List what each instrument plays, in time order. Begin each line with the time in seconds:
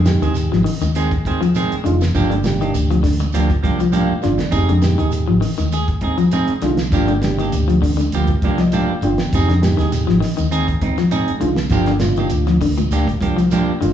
Already playing: fingered electric bass F2, clean electric guitar D3
0.05 reed electric piano G#3 D#4 G4, muted clean electric guitar stroke, snare, closed hi-hat, high conga, shekere
0.22 fingered electric bass D#2, clean electric guitar D#3 G#3 C4 G#4, closed hi-hat, shekere
0.35 muted clean electric guitar stroke, closed hi-hat, shekere
0.52 fingered electric bass G#1, clean electric guitar F3, muted clean electric guitar stroke, snare
0.64 clean electric guitar D#3, open hi-hat, low conga, shekere
0.81 fingered electric bass D#2, clean electric guitar D#3, muted clean electric guitar stroke, closed hi-hat, high conga, shekere
0.95 clean electric guitar D#3 G#3 C4 G#4, closed hi-hat, shekere
1.11 muted clean electric guitar stroke, kick, closed hi-hat
1.25 clean electric guitar D#3 G#3 C4 G#4, kick, closed hi-hat, high conga
1.41 clean electric guitar F3, muted clean electric guitar stroke, closed hi-hat, shekere
1.54 clean electric guitar D#3 G#3 C4 G#4, closed hi-hat, high conga, shekere
1.72 muted fingered electric bass stroke, closed hi-hat
1.84 fingered electric bass F1, clean electric guitar D3, reed electric piano G#3 D#4 F4, muted clean electric guitar stroke, closed hi-hat, high conga, low conga, shekere
2.01 muted clean electric guitar stroke, snare, closed hi-hat, shekere
2.14 fingered electric bass G1, clean electric guitar F3 A#3 D4 G4, reed electric piano A#3 D4 F4, kick, closed hi-hat, shekere
2.30 clean electric guitar D3, closed hi-hat, high conga
2.44 reed electric piano A#3 D4 G4, muted clean electric guitar stroke, snare, closed hi-hat, high conga, shekere
2.61 clean electric guitar D#3 A#3 D4 G4, closed hi-hat, shekere
2.74 fingered electric bass D2, muted clean electric guitar stroke, closed hi-hat, shekere
2.91 clean electric guitar F3, muted clean electric guitar stroke, closed hi-hat
3.03 clean electric guitar D3, kick, snare, open hi-hat, low conga, shekere
3.20 muted clean electric guitar stroke, closed hi-hat, high conga, shekere
3.33 fingered electric bass D2, clean electric guitar F3 A#3 D4 G4, closed hi-hat, shekere
3.50 muted clean electric guitar stroke, kick, closed hi-hat
3.63 fingered electric bass C2, clean electric guitar F3 A#3 D4 G4, kick, closed hi-hat, high conga
3.79 clean electric guitar F3, muted clean electric guitar stroke, closed hi-hat, shekere
3.92 clean electric guitar F3 A#3 D4 G4, reed electric piano F5, closed hi-hat, high conga, shekere
4.11 muted fingered electric bass stroke
4.22 fingered electric bass G1, clean electric guitar D3, reed electric piano A#3 D4 F4 D5, muted clean electric guitar stroke, snare, closed hi-hat, high conga, low conga, shekere
4.38 muted clean electric guitar stroke, muted fingered electric bass stroke, snare, closed hi-hat, shekere
4.51 fingered electric bass F1, reed electric piano G#3 D#4 G4, clean electric guitar C4 D#4 G#4, kick, closed hi-hat, shekere
4.69 fingered electric bass F2, clean electric guitar D3, closed hi-hat, high conga
4.82 reed electric piano G#3 D#4 G4, muted clean electric guitar stroke, snare, closed hi-hat, high conga, shekere
4.98 fingered electric bass D#2, clean electric guitar D#3 D#4 G#4, closed hi-hat, shekere
5.11 muted clean electric guitar stroke, closed hi-hat, shekere
5.28 fingered electric bass G#1, clean electric guitar F3, muted clean electric guitar stroke
5.41 clean electric guitar D#3, open hi-hat, low conga, shekere
5.58 fingered electric bass D#2, clean electric guitar D#3, muted clean electric guitar stroke, closed hi-hat, high conga, shekere
5.72 clean electric guitar G#4, muted clean electric guitar stroke, closed hi-hat, shekere
5.88 muted clean electric guitar stroke, kick, closed hi-hat
6.01 clean electric guitar C4 D#4 G#4, kick, closed hi-hat, high conga
6.18 clean electric guitar F3, muted clean electric guitar stroke, closed hi-hat, shekere
6.31 clean electric guitar C4 D#4 G#4, closed hi-hat, high conga, shekere
6.48 muted fingered electric bass stroke, closed hi-hat
6.62 fingered electric bass C2, clean electric guitar D3, reed electric piano G#3 D#4 F4, muted clean electric guitar stroke, snare, closed hi-hat, high conga, low conga, shekere
6.77 muted clean electric guitar stroke, snare, closed hi-hat, shekere
6.92 fingered electric bass G1, clean electric guitar F3 A#3 D4 G4, reed electric piano A#3 D4 F4, kick, closed hi-hat, shekere
7.08 clean electric guitar D3, closed hi-hat, high conga
7.22 reed electric piano A#3 D4 G4, muted clean electric guitar stroke, snare, closed hi-hat, high conga, shekere
7.39 clean electric guitar D#3 A#3 D4 G4, closed hi-hat, shekere
7.52 fingered electric bass D2, muted clean electric guitar stroke, closed hi-hat, shekere
7.68 clean electric guitar F3, muted clean electric guitar stroke, closed hi-hat
7.82 clean electric guitar D3, kick, open hi-hat, low conga, shekere
7.97 clean electric guitar D3, muted clean electric guitar stroke, closed hi-hat, high conga, shekere
8.12 fingered electric bass D2, clean electric guitar F3 A#3 G4, muted clean electric guitar stroke, closed hi-hat, shekere
8.27 muted clean electric guitar stroke, kick, closed hi-hat, high conga, low conga
8.42 fingered electric bass C2, clean electric guitar F3 A#3 D4 G4, reed electric piano D5, kick, closed hi-hat, high conga
8.58 clean electric guitar F3, reed electric piano D#5, muted clean electric guitar stroke, snare, closed hi-hat, shekere
8.72 clean electric guitar F3 A#3 D4 G4, reed electric piano F5, closed hi-hat, high conga, shekere
8.90 muted fingered electric bass stroke
9.01 fingered electric bass G1, clean electric guitar D3, reed electric piano A#3 D4 F4 G5, muted clean electric guitar stroke, closed hi-hat, low conga, shekere
9.18 muted clean electric guitar stroke, muted fingered electric bass stroke, snare, closed hi-hat, low conga, shekere
9.33 fingered electric bass F1, reed electric piano G#3 D#4 G4, clean electric guitar C4 D#4 G#4, kick, closed hi-hat, shekere
9.49 fingered electric bass F2, clean electric guitar D3, snare, closed hi-hat
9.61 reed electric piano G#3 D#4 G4, muted clean electric guitar stroke, snare, closed hi-hat, high conga, shekere
9.77 fingered electric bass D#2, clean electric guitar D#3 D#4 G#4, snare, closed hi-hat, shekere
9.92 muted clean electric guitar stroke, snare, closed hi-hat, shekere
10.07 fingered electric bass G#1, clean electric guitar F3, muted clean electric guitar stroke, snare
10.20 clean electric guitar D#3, snare, open hi-hat, low conga, shekere
10.37 fingered electric bass D#2, clean electric guitar D#3, muted clean electric guitar stroke, closed hi-hat, high conga, shekere
10.51 clean electric guitar C4 D#4 G#4, closed hi-hat, shekere
10.68 muted clean electric guitar stroke, kick, closed hi-hat, low conga
10.81 clean electric guitar C4 D#4, muted clean electric guitar stroke, kick, closed hi-hat, high conga
10.98 clean electric guitar F3, muted clean electric guitar stroke, snare, closed hi-hat, shekere
11.11 clean electric guitar C4 D#4 G#4, closed hi-hat, high conga, shekere
11.28 muted fingered electric bass stroke, closed hi-hat
11.40 fingered electric bass C2, clean electric guitar D3, reed electric piano G#3 D#4 F4, muted clean electric guitar stroke, closed hi-hat, high conga, low conga, shekere
11.56 muted clean electric guitar stroke, snare, closed hi-hat, shekere
11.70 fingered electric bass G1, clean electric guitar F3 A#3 D4 G4, reed electric piano A#3 D4 F4, kick, snare, closed hi-hat, shekere
11.86 clean electric guitar D3, snare, closed hi-hat
12.00 reed electric piano A#3 D4 F4, muted clean electric guitar stroke, snare, closed hi-hat, high conga, shekere
12.16 clean electric guitar D#3 A#3 D4 G4, closed hi-hat, shekere
12.30 fingered electric bass D2, muted clean electric guitar stroke, closed hi-hat, shekere
12.47 clean electric guitar F3, muted clean electric guitar stroke, snare, closed hi-hat
12.61 clean electric guitar D3, kick, open hi-hat, low conga, shekere
12.78 clean electric guitar A#2, muted clean electric guitar stroke, closed hi-hat, high conga, shekere
12.91 fingered electric bass D2, clean electric guitar A#3 D4 G4, muted clean electric guitar stroke, closed hi-hat, shekere
13.07 muted clean electric guitar stroke, kick, closed hi-hat, high conga
13.21 fingered electric bass C2, clean electric guitar F3 A#3 D4 G4, kick, closed hi-hat, high conga
13.37 clean electric guitar F3, muted clean electric guitar stroke, closed hi-hat, shekere
13.51 clean electric guitar F3 A#3 D4 G4, closed hi-hat, high conga, shekere
13.68 muted fingered electric bass stroke
13.81 fingered electric bass G1, clean electric guitar D3, reed electric piano A#3 D4 F4, muted clean electric guitar stroke, closed hi-hat, high conga, low conga, shekere